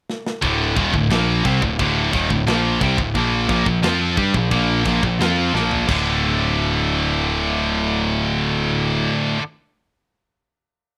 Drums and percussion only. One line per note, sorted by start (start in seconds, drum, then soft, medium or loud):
0.10 snare medium
0.26 snare loud
0.42 kick loud
0.42 crash medium
0.77 kick loud
0.77 crash medium
0.94 kick medium
1.10 snare loud
1.10 crash medium
1.45 kick loud
1.45 crash medium
1.62 kick loud
1.79 kick loud
1.79 crash medium
2.13 kick loud
2.13 crash medium
2.30 kick medium
2.47 snare loud
2.47 crash medium
2.81 kick loud
2.81 crash medium
2.98 kick loud
3.15 kick loud
3.15 crash medium
3.49 kick loud
3.49 crash medium
3.66 kick loud
3.83 snare loud
3.83 crash medium
4.17 kick loud
4.17 crash medium
4.34 kick loud
4.51 kick loud
4.51 crash medium
4.85 kick loud
4.85 crash medium
5.03 kick medium
5.20 snare loud
5.20 crash medium
5.55 snare medium
5.71 floor tom medium
5.89 kick loud
5.89 crash medium